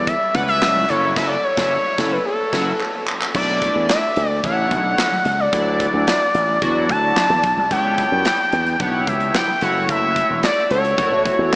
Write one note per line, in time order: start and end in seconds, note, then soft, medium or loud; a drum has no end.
0.00 0.13 E2 medium
0.07 0.34 E5 loud
0.07 kick loud
0.07 closed hi-hat medium
0.07 muted conga medium
0.34 0.57 C#2 loud
0.34 0.85 G3 medium
0.34 0.85 C#4 medium
0.34 0.85 E4 medium
0.34 0.86 B4 medium
0.34 0.41 F#5 loud
0.34 kick medium
0.34 closed hi-hat medium
0.34 muted conga medium
0.34 low conga medium
0.48 0.91 E5 loud
0.48 closed hi-hat soft
0.62 0.84 C#2 medium
0.62 snare loud
0.62 clap loud
0.62 closed hi-hat medium
0.62 high conga medium
0.76 high conga medium
0.89 1.12 F#1 medium
0.89 1.15 F#3 medium
0.89 1.15 C#4 medium
0.89 1.15 E4 medium
0.89 1.15 A4 medium
0.89 1.18 C#5 loud
0.89 closed hi-hat medium
1.16 1.35 F#1 loud
1.16 1.35 F#3 loud
1.16 1.35 C#4 loud
1.16 1.35 E4 loud
1.16 1.35 A4 loud
1.16 1.27 E5 loud
1.16 kick loud
1.16 snare loud
1.16 crash medium
1.27 1.32 C#5 medium
1.27 1.45 D5 medium
1.44 1.70 C#5 loud
1.57 1.76 F#1 loud
1.57 1.76 F#3 loud
1.57 1.76 C#4 loud
1.57 1.76 E4 loud
1.57 1.76 A4 medium
1.57 kick loud
1.57 snare loud
1.71 2.14 C#5 loud
1.98 2.17 F#1 loud
1.98 2.16 F#3 loud
1.98 2.17 C#4 loud
1.98 2.17 E4 loud
1.98 2.17 A4 medium
1.98 kick loud
1.98 snare loud
2.12 2.25 B4 medium
2.26 3.03 A4 medium
2.52 2.71 F#1 loud
2.52 2.71 F#3 loud
2.52 2.71 C#4 loud
2.52 2.71 E4 loud
2.52 2.72 F#4 loud
2.52 kick loud
2.52 snare loud
2.52 crash medium
2.81 clap medium
3.08 clap medium
3.21 clap medium
3.34 3.68 B1 loud
3.34 4.02 A3 medium
3.34 4.02 D4 medium
3.34 4.02 E4 medium
3.34 4.03 D5 medium
3.34 3.86 D5 loud
3.34 kick loud
3.34 crash loud
3.34 muted conga soft
3.62 kick medium
3.62 closed hi-hat medium
3.62 muted conga medium
3.76 3.87 E2 medium
3.89 4.40 E5 medium
3.89 snare loud
3.89 clap medium
3.89 closed hi-hat loud
3.89 high conga medium
4.16 4.39 D2 medium
4.16 closed hi-hat medium
4.44 4.66 A1 loud
4.44 5.11 A3 medium
4.44 5.12 D4 medium
4.44 5.12 E4 medium
4.44 5.12 C#5 medium
4.44 5.41 F#5 loud
4.44 kick loud
4.44 closed hi-hat medium
4.44 muted conga medium
4.44 low conga medium
4.71 4.93 B1 medium
4.71 kick loud
4.71 closed hi-hat medium
4.71 muted conga medium
4.71 low conga medium
4.98 snare loud
4.98 clap loud
4.98 closed hi-hat medium
4.98 high conga medium
5.12 high conga medium
5.25 5.48 C#2 medium
5.25 closed hi-hat medium
5.40 6.90 D5 loud
5.53 5.86 D2 loud
5.53 6.20 F#3 medium
5.53 6.21 D4 medium
5.53 6.21 E4 medium
5.53 6.21 D5 medium
5.53 kick loud
5.53 closed hi-hat loud
5.80 kick medium
5.80 closed hi-hat medium
5.80 muted conga medium
5.94 6.05 D2 loud
6.07 snare loud
6.07 clap medium
6.07 closed hi-hat medium
6.07 high conga medium
6.34 6.57 A1 medium
6.34 closed hi-hat medium
6.62 6.89 E2 medium
6.62 7.30 F#3 medium
6.62 7.30 D4 medium
6.62 7.30 E4 medium
6.62 7.30 F#4 medium
6.62 kick loud
6.62 closed hi-hat medium
6.62 muted conga medium
6.62 low conga medium
6.89 7.11 D2 medium
6.89 7.68 A5 loud
6.89 kick medium
6.89 closed hi-hat medium
6.89 muted conga medium
6.89 low conga medium
7.16 snare loud
7.16 clap loud
7.16 closed hi-hat medium
7.16 high conga medium
7.30 7.41 E2 medium
7.30 high conga medium
7.43 7.55 B1 medium
7.43 kick loud
7.43 closed hi-hat medium
7.57 7.68 C2 medium
7.71 8.04 C#2 loud
7.71 8.39 B3 medium
7.71 8.39 E4 medium
7.71 8.39 G4 medium
7.71 8.39 C#5 medium
7.71 8.82 G5 loud
7.71 kick loud
7.71 closed hi-hat loud
7.71 muted conga soft
7.98 kick medium
7.98 closed hi-hat medium
7.98 muted conga soft
8.12 8.23 F#2 medium
8.25 snare loud
8.25 clap medium
8.25 closed hi-hat loud
8.25 high conga medium
8.52 8.75 E2 medium
8.52 closed hi-hat medium
8.66 closed hi-hat soft
8.80 9.02 B1 loud
8.80 9.48 B3 medium
8.80 8.87 D4 medium
8.80 9.48 G4 medium
8.80 9.48 C#5 medium
8.80 9.09 F#5 loud
8.80 kick loud
8.80 closed hi-hat medium
8.80 muted conga medium
8.80 low conga medium
8.87 9.51 E4 medium
9.07 9.30 C#2 medium
9.07 9.37 E5 medium
9.07 kick loud
9.07 closed hi-hat medium
9.07 muted conga medium
9.07 low conga medium
9.20 closed hi-hat soft
9.34 9.64 G5 loud
9.34 snare loud
9.34 clap loud
9.34 closed hi-hat medium
9.34 high conga medium
9.48 high conga medium
9.61 9.84 F#1 loud
9.61 10.49 A3 medium
9.61 10.49 E4 medium
9.61 10.49 F#4 medium
9.61 10.49 C#5 medium
9.61 9.89 F#5 loud
9.61 closed hi-hat medium
9.89 10.22 F#1 loud
9.89 10.40 E5 loud
9.89 kick loud
9.89 closed hi-hat loud
9.89 muted conga soft
10.16 kick medium
10.16 closed hi-hat medium
10.16 muted conga medium
10.30 10.41 E1 medium
10.43 10.69 D5 medium
10.43 snare loud
10.43 clap medium
10.43 closed hi-hat medium
10.43 high conga medium
10.70 10.93 C#2 medium
10.70 10.82 F#4 medium
10.70 10.82 A4 medium
10.70 10.82 C#5 loud
10.70 11.55 C#5 medium
10.70 closed hi-hat medium
10.85 closed hi-hat medium
10.98 11.09 F#2 loud
10.98 11.55 A3 medium
10.98 11.55 E4 medium
10.98 11.55 F#4 medium
10.98 11.55 C#5 medium
10.98 kick loud
10.98 closed hi-hat medium
10.98 muted conga medium
10.98 low conga medium
11.12 11.23 A2 medium
11.12 11.23 F#4 medium
11.12 11.23 A4 medium
11.12 11.23 C#5 medium
11.25 kick medium
11.25 closed hi-hat medium
11.25 muted conga medium
11.25 low conga medium
11.39 11.50 E2 medium
11.39 11.55 F#4 medium
11.39 11.55 A4 medium
11.39 11.55 C#5 loud
11.52 high conga medium